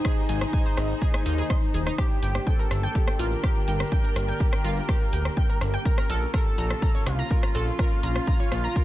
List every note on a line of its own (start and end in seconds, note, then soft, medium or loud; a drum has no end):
0.00 1.94 C3 medium
0.00 1.94 D#3 medium
0.00 1.89 D#4 loud
0.00 1.94 D#4 loud
0.00 1.98 D#4 medium
0.00 1.98 G#4 medium
0.00 3.53 C5 medium
0.00 1.98 G#5 medium
0.05 1.96 A#3 medium
0.05 0.13 G#4 loud
0.05 kick loud
0.05 cross-stick medium
0.05 shaker soft
0.29 0.45 G#1 loud
0.29 0.37 G#5 medium
0.29 open hi-hat loud
0.29 shaker medium
0.41 cross-stick medium
0.41 shaker soft
0.53 0.58 G#5 loud
0.53 kick loud
0.53 shaker soft
0.66 0.73 C5 medium
0.77 0.93 G#1 loud
0.77 cross-stick medium
0.77 open hi-hat medium
0.77 shaker medium
0.90 shaker soft
1.02 1.13 G#4 medium
1.02 kick loud
1.02 shaker soft
1.14 1.18 G#5 medium
1.14 cross-stick medium
1.26 1.42 D#2 loud
1.26 1.38 D#4 loud
1.26 open hi-hat loud
1.26 shaker medium
1.38 1.43 G#4 loud
1.38 shaker soft
1.50 1.55 C6 medium
1.50 kick loud
1.50 cross-stick medium
1.50 shaker soft
1.74 1.90 D#1 loud
1.74 1.79 G#4 medium
1.74 open hi-hat medium
1.74 shaker medium
1.87 1.98 D#4 loud
1.87 cross-stick medium
1.87 shaker soft
1.98 5.82 D3 medium
1.98 5.82 G3 medium
1.98 8.84 A#3 medium
1.98 5.85 D4 medium
1.98 2.48 G4 loud
1.98 5.82 G4 loud
1.98 2.06 G4 loud
1.98 kick loud
1.98 cross-stick medium
1.98 shaker soft
2.18 8.84 A#3 medium
2.18 7.35 G4 medium
2.18 6.88 G5 medium
2.23 2.39 G1 loud
2.23 2.30 G5 medium
2.23 open hi-hat loud
2.23 shaker medium
2.35 cross-stick medium
2.35 shaker soft
2.47 3.21 A4 loud
2.47 2.51 G5 loud
2.47 kick loud
2.47 shaker soft
2.59 2.67 A#4 medium
2.71 2.87 G1 loud
2.71 cross-stick medium
2.71 open hi-hat medium
2.71 shaker medium
2.83 2.95 G5 loud
2.83 shaker soft
2.95 3.07 G4 medium
2.95 kick loud
2.95 shaker soft
3.08 3.12 G5 medium
3.08 cross-stick medium
3.19 3.35 A1 loud
3.19 3.27 F4 loud
3.19 5.76 A#4 loud
3.19 open hi-hat loud
3.19 shaker medium
3.32 shaker soft
3.43 3.51 G4 loud
3.43 kick loud
3.43 cross-stick medium
3.43 shaker soft
3.68 3.84 G1 medium
3.68 3.76 G5 medium
3.68 open hi-hat medium
3.68 shaker medium
3.80 cross-stick medium
3.80 shaker soft
3.92 3.97 G5 loud
3.92 kick loud
3.92 shaker soft
4.04 4.12 A#4 medium
4.16 4.32 G1 loud
4.16 cross-stick medium
4.16 open hi-hat loud
4.16 shaker medium
4.28 4.40 G5 loud
4.28 shaker soft
4.40 4.52 G4 medium
4.40 kick loud
4.40 shaker soft
4.53 4.57 G5 medium
4.53 cross-stick medium
4.64 4.81 G1 loud
4.64 4.72 F4 loud
4.64 open hi-hat medium
4.64 shaker medium
4.77 shaker soft
4.89 4.97 G4 loud
4.89 kick loud
4.89 cross-stick soft
4.89 shaker soft
5.13 5.29 D1 medium
5.13 5.21 G5 medium
5.13 open hi-hat loud
5.13 shaker medium
5.25 cross-stick medium
5.25 shaker soft
5.37 5.42 G5 loud
5.37 kick loud
5.37 shaker soft
5.49 5.57 A#4 medium
5.61 5.77 G1 medium
5.61 cross-stick medium
5.61 open hi-hat loud
5.61 shaker medium
5.74 5.85 G5 loud
5.74 shaker soft
5.85 8.84 C#3 medium
5.85 8.84 F3 medium
5.85 8.84 C#4 medium
5.85 8.84 F4 loud
5.85 5.97 A#4 medium
5.85 6.30 A#4 loud
5.85 kick loud
5.85 shaker soft
5.98 8.84 F4 medium
5.98 6.02 A#5 medium
5.98 cross-stick medium
6.10 6.26 A#1 loud
6.10 6.18 A4 loud
6.10 open hi-hat loud
6.10 shaker medium
6.22 shaker soft
6.34 7.08 A4 loud
6.34 6.42 A#4 loud
6.34 kick loud
6.34 cross-stick soft
6.34 shaker soft
6.58 6.74 A#1 loud
6.58 6.66 A#5 medium
6.58 open hi-hat loud
6.58 shaker medium
6.70 cross-stick medium
6.70 shaker soft
6.80 8.84 F5 medium
6.80 6.87 A#5 loud
6.80 kick loud
6.80 shaker soft
6.95 7.02 C#5 medium
7.06 7.22 C2 loud
7.06 8.84 F4 loud
7.06 cross-stick medium
7.06 open hi-hat loud
7.06 shaker medium
7.19 7.30 A#5 loud
7.19 shaker soft
7.31 7.42 A#4 medium
7.31 kick loud
7.31 shaker soft
7.43 7.48 A#5 medium
7.43 cross-stick soft
7.55 7.71 A#1 medium
7.55 7.63 A4 loud
7.55 open hi-hat loud
7.55 shaker medium
7.67 shaker soft
7.79 7.87 A#4 loud
7.79 kick loud
7.79 cross-stick medium
7.79 shaker soft
8.03 8.19 A#1 loud
8.03 8.11 A#5 medium
8.03 open hi-hat loud
8.03 shaker medium
8.16 cross-stick medium
8.16 shaker soft
8.27 8.32 A#5 loud
8.27 kick loud
8.27 shaker soft
8.40 8.47 C#5 medium
8.52 8.68 A#1 loud
8.52 cross-stick medium
8.52 open hi-hat loud
8.52 shaker medium
8.64 8.75 A#5 loud
8.64 shaker soft
8.76 8.84 A#4 medium
8.76 kick loud
8.76 shaker soft